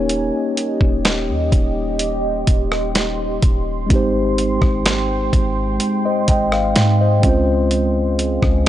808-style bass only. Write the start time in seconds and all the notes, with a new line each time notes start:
Already playing: D#1
0.81 D#1
1.29 D#2
1.52 D#1
2.48 D#1
3.43 D#1
3.90 G#1
4.62 G#1
5.33 G#1
6.28 G#1
6.76 G#2
7.24 C#2
8.43 C#2